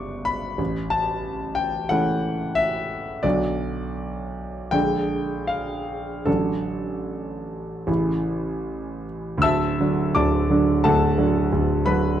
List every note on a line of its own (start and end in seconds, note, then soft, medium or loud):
0.00 0.55 G1 medium
0.00 0.55 G3 soft
0.00 0.55 B3 soft
0.00 0.56 D4 soft
0.00 0.61 D5 medium
0.00 0.26 C#6 medium
0.00 0.62 D6 medium
0.25 0.91 B5 medium
0.58 3.20 A1 medium
0.90 1.56 A5 medium
1.55 1.89 G5 medium
1.89 3.20 E3 soft
1.89 3.20 A3 soft
1.89 3.20 C#4 medium
1.89 2.57 F#5 medium
2.55 3.23 E5 medium
3.23 4.68 B1 medium
3.23 4.68 D3 soft
3.23 4.68 F#3 soft
3.23 4.69 D4 soft
3.23 4.72 D5 medium
4.71 6.23 A#1 medium
4.71 6.22 D3 soft
4.71 6.23 G#3 soft
4.71 6.23 D4 soft
4.71 5.48 G5 medium
5.47 6.26 F5 medium
6.25 7.83 A1 soft
6.25 7.83 D3 soft
6.25 7.84 F#3 soft
6.25 7.84 D4 soft
6.25 9.04 A4 medium
7.87 9.38 A1 soft
7.87 9.38 C#3 soft
7.87 9.39 E3 soft
7.87 9.39 E4 soft
9.38 9.76 D2 medium
9.42 9.78 D1 soft
9.42 10.11 E5 medium
9.42 10.11 A5 medium
9.42 10.15 E6 medium
9.80 10.12 D3 soft
9.80 10.12 F#3 soft
9.80 10.12 D4 soft
10.15 10.49 D1 medium
10.15 10.49 D2 medium
10.15 10.80 D5 medium
10.15 10.80 A5 medium
10.15 10.83 D6 medium
10.50 10.80 D3 soft
10.50 10.80 F#3 soft
10.50 10.81 D4 soft
10.84 11.17 D1 medium
10.84 11.17 D2 medium
10.84 11.83 A4 medium
10.84 11.83 F#5 medium
10.84 11.86 A5 medium
11.18 11.48 D3 soft
11.18 11.49 F#3 soft
11.18 11.49 D4 soft
11.52 11.85 D1 medium
11.52 11.85 D2 medium
11.86 12.17 D3 soft
11.86 12.17 F#3 soft
11.86 12.17 D4 soft
11.86 12.18 B4 medium
11.86 12.20 B5 medium